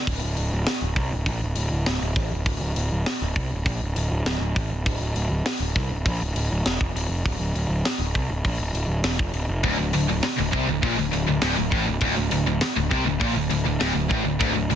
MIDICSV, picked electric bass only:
0, 0, Header, 1, 3, 480
1, 0, Start_track
1, 0, Key_signature, -1, "minor"
1, 0, Tempo, 597610
1, 63, Time_signature, 4, 2, 24, 8
1, 11849, End_track
2, 0, Start_track
2, 0, Title_t, "Picked electric bass"
2, 0, Program_c, 0, 34
2, 60, Note_on_c, 0, 26, 79
2, 172, Note_off_c, 0, 26, 0
2, 182, Note_on_c, 0, 26, 65
2, 294, Note_off_c, 0, 26, 0
2, 301, Note_on_c, 0, 26, 73
2, 413, Note_off_c, 0, 26, 0
2, 419, Note_on_c, 0, 26, 74
2, 532, Note_off_c, 0, 26, 0
2, 657, Note_on_c, 0, 26, 77
2, 767, Note_off_c, 0, 26, 0
2, 771, Note_on_c, 0, 36, 93
2, 888, Note_off_c, 0, 36, 0
2, 891, Note_on_c, 0, 26, 76
2, 1008, Note_off_c, 0, 26, 0
2, 1013, Note_on_c, 0, 34, 97
2, 1129, Note_off_c, 0, 34, 0
2, 1137, Note_on_c, 0, 26, 73
2, 1251, Note_off_c, 0, 26, 0
2, 1254, Note_on_c, 0, 26, 77
2, 1369, Note_off_c, 0, 26, 0
2, 1376, Note_on_c, 0, 26, 74
2, 1490, Note_off_c, 0, 26, 0
2, 1501, Note_on_c, 0, 26, 99
2, 1609, Note_off_c, 0, 26, 0
2, 1614, Note_on_c, 0, 26, 76
2, 1729, Note_off_c, 0, 26, 0
2, 1736, Note_on_c, 0, 33, 91
2, 1850, Note_off_c, 0, 33, 0
2, 1857, Note_on_c, 0, 26, 76
2, 1971, Note_off_c, 0, 26, 0
2, 1977, Note_on_c, 0, 26, 80
2, 2091, Note_off_c, 0, 26, 0
2, 2097, Note_on_c, 0, 26, 69
2, 2211, Note_off_c, 0, 26, 0
2, 2217, Note_on_c, 0, 26, 69
2, 2331, Note_off_c, 0, 26, 0
2, 2340, Note_on_c, 0, 26, 72
2, 2453, Note_off_c, 0, 26, 0
2, 2584, Note_on_c, 0, 26, 76
2, 2695, Note_off_c, 0, 26, 0
2, 2700, Note_on_c, 0, 36, 84
2, 2812, Note_off_c, 0, 36, 0
2, 2822, Note_on_c, 0, 26, 73
2, 2932, Note_off_c, 0, 26, 0
2, 2937, Note_on_c, 0, 34, 89
2, 3051, Note_off_c, 0, 34, 0
2, 3064, Note_on_c, 0, 26, 75
2, 3175, Note_off_c, 0, 26, 0
2, 3180, Note_on_c, 0, 26, 76
2, 3293, Note_off_c, 0, 26, 0
2, 3299, Note_on_c, 0, 26, 78
2, 3409, Note_off_c, 0, 26, 0
2, 3414, Note_on_c, 0, 26, 97
2, 3527, Note_off_c, 0, 26, 0
2, 3532, Note_on_c, 0, 26, 72
2, 3648, Note_off_c, 0, 26, 0
2, 3662, Note_on_c, 0, 33, 80
2, 3774, Note_off_c, 0, 33, 0
2, 3778, Note_on_c, 0, 26, 77
2, 3892, Note_off_c, 0, 26, 0
2, 3903, Note_on_c, 0, 26, 86
2, 4014, Note_off_c, 0, 26, 0
2, 4021, Note_on_c, 0, 26, 69
2, 4134, Note_off_c, 0, 26, 0
2, 4138, Note_on_c, 0, 26, 78
2, 4252, Note_off_c, 0, 26, 0
2, 4259, Note_on_c, 0, 26, 73
2, 4372, Note_off_c, 0, 26, 0
2, 4497, Note_on_c, 0, 26, 77
2, 4611, Note_off_c, 0, 26, 0
2, 4626, Note_on_c, 0, 36, 97
2, 4731, Note_off_c, 0, 36, 0
2, 4736, Note_on_c, 0, 26, 80
2, 4851, Note_off_c, 0, 26, 0
2, 4865, Note_on_c, 0, 34, 99
2, 4976, Note_off_c, 0, 34, 0
2, 4984, Note_on_c, 0, 26, 78
2, 5095, Note_off_c, 0, 26, 0
2, 5102, Note_on_c, 0, 26, 81
2, 5214, Note_off_c, 0, 26, 0
2, 5229, Note_on_c, 0, 26, 67
2, 5338, Note_off_c, 0, 26, 0
2, 5344, Note_on_c, 0, 28, 94
2, 5455, Note_off_c, 0, 28, 0
2, 5467, Note_on_c, 0, 29, 90
2, 5573, Note_off_c, 0, 29, 0
2, 5578, Note_on_c, 0, 26, 96
2, 5692, Note_off_c, 0, 26, 0
2, 5697, Note_on_c, 0, 29, 91
2, 5811, Note_off_c, 0, 29, 0
2, 5830, Note_on_c, 0, 26, 89
2, 5931, Note_off_c, 0, 26, 0
2, 5936, Note_on_c, 0, 26, 75
2, 6051, Note_off_c, 0, 26, 0
2, 6058, Note_on_c, 0, 26, 75
2, 6168, Note_off_c, 0, 26, 0
2, 6173, Note_on_c, 0, 26, 72
2, 6289, Note_off_c, 0, 26, 0
2, 6418, Note_on_c, 0, 26, 72
2, 6532, Note_off_c, 0, 26, 0
2, 6546, Note_on_c, 0, 36, 89
2, 6647, Note_off_c, 0, 36, 0
2, 6652, Note_on_c, 0, 26, 83
2, 6769, Note_off_c, 0, 26, 0
2, 6787, Note_on_c, 0, 34, 91
2, 6894, Note_off_c, 0, 34, 0
2, 6899, Note_on_c, 0, 26, 73
2, 7007, Note_off_c, 0, 26, 0
2, 7012, Note_on_c, 0, 26, 70
2, 7122, Note_off_c, 0, 26, 0
2, 7127, Note_on_c, 0, 26, 73
2, 7246, Note_off_c, 0, 26, 0
2, 7251, Note_on_c, 0, 28, 90
2, 7368, Note_off_c, 0, 28, 0
2, 7382, Note_on_c, 0, 29, 83
2, 7489, Note_off_c, 0, 29, 0
2, 7494, Note_on_c, 0, 26, 95
2, 7610, Note_off_c, 0, 26, 0
2, 7616, Note_on_c, 0, 29, 90
2, 7731, Note_off_c, 0, 29, 0
2, 7744, Note_on_c, 0, 26, 83
2, 7855, Note_off_c, 0, 26, 0
2, 7858, Note_on_c, 0, 26, 78
2, 7972, Note_off_c, 0, 26, 0
2, 7981, Note_on_c, 0, 26, 69
2, 8093, Note_off_c, 0, 26, 0
2, 8108, Note_on_c, 0, 26, 71
2, 8217, Note_off_c, 0, 26, 0
2, 8348, Note_on_c, 0, 26, 83
2, 8457, Note_off_c, 0, 26, 0
2, 8461, Note_on_c, 0, 36, 98
2, 8573, Note_off_c, 0, 36, 0
2, 8585, Note_on_c, 0, 26, 76
2, 8691, Note_off_c, 0, 26, 0
2, 8695, Note_on_c, 0, 34, 86
2, 8810, Note_off_c, 0, 34, 0
2, 8824, Note_on_c, 0, 26, 79
2, 8933, Note_off_c, 0, 26, 0
2, 8937, Note_on_c, 0, 26, 77
2, 9051, Note_off_c, 0, 26, 0
2, 9057, Note_on_c, 0, 26, 70
2, 9167, Note_off_c, 0, 26, 0
2, 9172, Note_on_c, 0, 26, 99
2, 9288, Note_off_c, 0, 26, 0
2, 9299, Note_on_c, 0, 26, 75
2, 9409, Note_off_c, 0, 26, 0
2, 9413, Note_on_c, 0, 33, 93
2, 9528, Note_off_c, 0, 33, 0
2, 9538, Note_on_c, 0, 26, 77
2, 9651, Note_off_c, 0, 26, 0
2, 9654, Note_on_c, 0, 26, 87
2, 9769, Note_off_c, 0, 26, 0
2, 9773, Note_on_c, 0, 26, 70
2, 9884, Note_off_c, 0, 26, 0
2, 9889, Note_on_c, 0, 26, 74
2, 10006, Note_off_c, 0, 26, 0
2, 10010, Note_on_c, 0, 26, 76
2, 10126, Note_off_c, 0, 26, 0
2, 10258, Note_on_c, 0, 26, 78
2, 10366, Note_off_c, 0, 26, 0
2, 10371, Note_on_c, 0, 36, 95
2, 10487, Note_off_c, 0, 36, 0
2, 10492, Note_on_c, 0, 26, 81
2, 10607, Note_off_c, 0, 26, 0
2, 10612, Note_on_c, 0, 34, 88
2, 10725, Note_off_c, 0, 34, 0
2, 10730, Note_on_c, 0, 26, 73
2, 10846, Note_off_c, 0, 26, 0
2, 10853, Note_on_c, 0, 26, 74
2, 10967, Note_off_c, 0, 26, 0
2, 10974, Note_on_c, 0, 26, 74
2, 11085, Note_off_c, 0, 26, 0
2, 11090, Note_on_c, 0, 26, 93
2, 11199, Note_off_c, 0, 26, 0
2, 11204, Note_on_c, 0, 26, 75
2, 11322, Note_off_c, 0, 26, 0
2, 11334, Note_on_c, 0, 33, 88
2, 11448, Note_off_c, 0, 33, 0
2, 11454, Note_on_c, 0, 26, 78
2, 11567, Note_off_c, 0, 26, 0
2, 11572, Note_on_c, 0, 26, 90
2, 11686, Note_off_c, 0, 26, 0
2, 11690, Note_on_c, 0, 26, 72
2, 11801, Note_off_c, 0, 26, 0
2, 11806, Note_on_c, 0, 26, 74
2, 11849, Note_off_c, 0, 26, 0
2, 11849, End_track
3, 0, Start_track
3, 0, Title_t, "Muted picked electric bass strokes"
3, 539, Note_on_c, 9, 29, 35
3, 620, Note_off_c, 9, 29, 0
3, 2462, Note_on_c, 9, 29, 34
3, 2542, Note_off_c, 9, 29, 0
3, 4376, Note_on_c, 9, 29, 33
3, 4457, Note_off_c, 9, 29, 0
3, 6304, Note_on_c, 9, 29, 35
3, 6385, Note_off_c, 9, 29, 0
3, 8222, Note_on_c, 9, 29, 36
3, 8303, Note_off_c, 9, 29, 0
3, 10138, Note_on_c, 9, 29, 36
3, 10218, Note_off_c, 9, 29, 0
3, 11849, End_track
0, 0, End_of_file